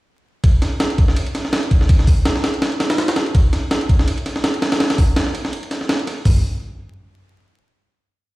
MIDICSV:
0, 0, Header, 1, 2, 480
1, 0, Start_track
1, 0, Tempo, 363636
1, 577, Time_signature, 4, 2, 24, 8
1, 11022, End_track
2, 0, Start_track
2, 0, Title_t, "Drums"
2, 576, Note_on_c, 9, 51, 89
2, 577, Note_on_c, 9, 36, 115
2, 708, Note_off_c, 9, 51, 0
2, 709, Note_off_c, 9, 36, 0
2, 817, Note_on_c, 9, 38, 45
2, 817, Note_on_c, 9, 51, 65
2, 949, Note_off_c, 9, 38, 0
2, 949, Note_off_c, 9, 51, 0
2, 1057, Note_on_c, 9, 38, 117
2, 1057, Note_on_c, 9, 51, 84
2, 1189, Note_off_c, 9, 38, 0
2, 1189, Note_off_c, 9, 51, 0
2, 1191, Note_on_c, 9, 51, 45
2, 1297, Note_off_c, 9, 51, 0
2, 1297, Note_on_c, 9, 36, 98
2, 1297, Note_on_c, 9, 51, 64
2, 1429, Note_off_c, 9, 36, 0
2, 1429, Note_off_c, 9, 51, 0
2, 1430, Note_on_c, 9, 38, 58
2, 1537, Note_on_c, 9, 51, 88
2, 1562, Note_off_c, 9, 38, 0
2, 1669, Note_off_c, 9, 51, 0
2, 1669, Note_on_c, 9, 51, 42
2, 1779, Note_off_c, 9, 51, 0
2, 1779, Note_on_c, 9, 38, 46
2, 1779, Note_on_c, 9, 51, 67
2, 1910, Note_off_c, 9, 38, 0
2, 1910, Note_on_c, 9, 38, 51
2, 1911, Note_off_c, 9, 51, 0
2, 2016, Note_off_c, 9, 38, 0
2, 2016, Note_on_c, 9, 38, 118
2, 2016, Note_on_c, 9, 51, 86
2, 2148, Note_off_c, 9, 38, 0
2, 2148, Note_off_c, 9, 51, 0
2, 2149, Note_on_c, 9, 51, 45
2, 2257, Note_off_c, 9, 51, 0
2, 2257, Note_on_c, 9, 36, 95
2, 2257, Note_on_c, 9, 51, 67
2, 2388, Note_on_c, 9, 38, 53
2, 2389, Note_off_c, 9, 36, 0
2, 2389, Note_off_c, 9, 51, 0
2, 2497, Note_on_c, 9, 51, 90
2, 2498, Note_on_c, 9, 36, 113
2, 2520, Note_off_c, 9, 38, 0
2, 2629, Note_off_c, 9, 51, 0
2, 2629, Note_on_c, 9, 38, 46
2, 2630, Note_off_c, 9, 36, 0
2, 2736, Note_on_c, 9, 46, 77
2, 2737, Note_on_c, 9, 36, 92
2, 2761, Note_off_c, 9, 38, 0
2, 2868, Note_off_c, 9, 46, 0
2, 2869, Note_off_c, 9, 36, 0
2, 2976, Note_on_c, 9, 38, 117
2, 2976, Note_on_c, 9, 51, 85
2, 3108, Note_off_c, 9, 38, 0
2, 3108, Note_off_c, 9, 51, 0
2, 3110, Note_on_c, 9, 38, 57
2, 3218, Note_off_c, 9, 38, 0
2, 3218, Note_on_c, 9, 38, 103
2, 3218, Note_on_c, 9, 51, 74
2, 3349, Note_off_c, 9, 51, 0
2, 3349, Note_on_c, 9, 51, 40
2, 3350, Note_off_c, 9, 38, 0
2, 3457, Note_off_c, 9, 51, 0
2, 3457, Note_on_c, 9, 38, 105
2, 3457, Note_on_c, 9, 51, 77
2, 3589, Note_off_c, 9, 38, 0
2, 3589, Note_off_c, 9, 51, 0
2, 3589, Note_on_c, 9, 51, 37
2, 3698, Note_off_c, 9, 51, 0
2, 3698, Note_on_c, 9, 38, 105
2, 3698, Note_on_c, 9, 51, 82
2, 3827, Note_off_c, 9, 38, 0
2, 3827, Note_off_c, 9, 51, 0
2, 3827, Note_on_c, 9, 38, 108
2, 3827, Note_on_c, 9, 51, 82
2, 3937, Note_off_c, 9, 38, 0
2, 3937, Note_off_c, 9, 51, 0
2, 3937, Note_on_c, 9, 38, 100
2, 3937, Note_on_c, 9, 51, 76
2, 4068, Note_off_c, 9, 38, 0
2, 4068, Note_off_c, 9, 51, 0
2, 4068, Note_on_c, 9, 38, 105
2, 4068, Note_on_c, 9, 51, 79
2, 4173, Note_off_c, 9, 38, 0
2, 4173, Note_off_c, 9, 51, 0
2, 4173, Note_on_c, 9, 38, 107
2, 4173, Note_on_c, 9, 51, 77
2, 4305, Note_off_c, 9, 38, 0
2, 4305, Note_off_c, 9, 51, 0
2, 4306, Note_on_c, 9, 51, 41
2, 4417, Note_off_c, 9, 51, 0
2, 4417, Note_on_c, 9, 36, 114
2, 4417, Note_on_c, 9, 51, 93
2, 4549, Note_off_c, 9, 36, 0
2, 4549, Note_off_c, 9, 51, 0
2, 4657, Note_on_c, 9, 38, 44
2, 4657, Note_on_c, 9, 51, 66
2, 4789, Note_off_c, 9, 38, 0
2, 4789, Note_off_c, 9, 51, 0
2, 4897, Note_on_c, 9, 38, 117
2, 4897, Note_on_c, 9, 51, 85
2, 5029, Note_off_c, 9, 38, 0
2, 5029, Note_off_c, 9, 51, 0
2, 5031, Note_on_c, 9, 51, 46
2, 5138, Note_on_c, 9, 36, 96
2, 5140, Note_off_c, 9, 51, 0
2, 5140, Note_on_c, 9, 51, 67
2, 5270, Note_off_c, 9, 36, 0
2, 5272, Note_off_c, 9, 51, 0
2, 5272, Note_on_c, 9, 38, 58
2, 5381, Note_on_c, 9, 51, 87
2, 5404, Note_off_c, 9, 38, 0
2, 5513, Note_off_c, 9, 51, 0
2, 5513, Note_on_c, 9, 51, 42
2, 5622, Note_off_c, 9, 51, 0
2, 5622, Note_on_c, 9, 38, 45
2, 5622, Note_on_c, 9, 51, 70
2, 5752, Note_off_c, 9, 38, 0
2, 5752, Note_on_c, 9, 38, 51
2, 5754, Note_off_c, 9, 51, 0
2, 5860, Note_off_c, 9, 38, 0
2, 5860, Note_on_c, 9, 38, 111
2, 5860, Note_on_c, 9, 51, 85
2, 5991, Note_off_c, 9, 51, 0
2, 5991, Note_on_c, 9, 51, 45
2, 5992, Note_off_c, 9, 38, 0
2, 6100, Note_off_c, 9, 51, 0
2, 6100, Note_on_c, 9, 38, 102
2, 6100, Note_on_c, 9, 51, 77
2, 6231, Note_off_c, 9, 38, 0
2, 6231, Note_off_c, 9, 51, 0
2, 6231, Note_on_c, 9, 38, 109
2, 6231, Note_on_c, 9, 51, 86
2, 6338, Note_off_c, 9, 38, 0
2, 6338, Note_off_c, 9, 51, 0
2, 6338, Note_on_c, 9, 38, 107
2, 6338, Note_on_c, 9, 51, 82
2, 6469, Note_off_c, 9, 38, 0
2, 6469, Note_off_c, 9, 51, 0
2, 6469, Note_on_c, 9, 38, 102
2, 6469, Note_on_c, 9, 51, 81
2, 6577, Note_on_c, 9, 36, 93
2, 6577, Note_on_c, 9, 46, 79
2, 6601, Note_off_c, 9, 38, 0
2, 6601, Note_off_c, 9, 51, 0
2, 6709, Note_off_c, 9, 36, 0
2, 6709, Note_off_c, 9, 46, 0
2, 6815, Note_on_c, 9, 38, 111
2, 6815, Note_on_c, 9, 51, 86
2, 6947, Note_off_c, 9, 38, 0
2, 6947, Note_off_c, 9, 51, 0
2, 6949, Note_on_c, 9, 38, 55
2, 7058, Note_on_c, 9, 51, 69
2, 7081, Note_off_c, 9, 38, 0
2, 7190, Note_off_c, 9, 51, 0
2, 7190, Note_on_c, 9, 38, 53
2, 7298, Note_on_c, 9, 51, 76
2, 7322, Note_off_c, 9, 38, 0
2, 7430, Note_off_c, 9, 51, 0
2, 7431, Note_on_c, 9, 51, 40
2, 7538, Note_off_c, 9, 51, 0
2, 7538, Note_on_c, 9, 38, 41
2, 7538, Note_on_c, 9, 51, 63
2, 7669, Note_off_c, 9, 38, 0
2, 7669, Note_on_c, 9, 38, 46
2, 7670, Note_off_c, 9, 51, 0
2, 7777, Note_off_c, 9, 38, 0
2, 7777, Note_on_c, 9, 38, 104
2, 7777, Note_on_c, 9, 51, 76
2, 7909, Note_off_c, 9, 38, 0
2, 7909, Note_off_c, 9, 51, 0
2, 7910, Note_on_c, 9, 51, 40
2, 8017, Note_off_c, 9, 51, 0
2, 8017, Note_on_c, 9, 38, 43
2, 8017, Note_on_c, 9, 51, 68
2, 8149, Note_off_c, 9, 38, 0
2, 8149, Note_off_c, 9, 51, 0
2, 8255, Note_on_c, 9, 36, 113
2, 8255, Note_on_c, 9, 43, 109
2, 8255, Note_on_c, 9, 46, 88
2, 8387, Note_off_c, 9, 36, 0
2, 8387, Note_off_c, 9, 43, 0
2, 8387, Note_off_c, 9, 46, 0
2, 11022, End_track
0, 0, End_of_file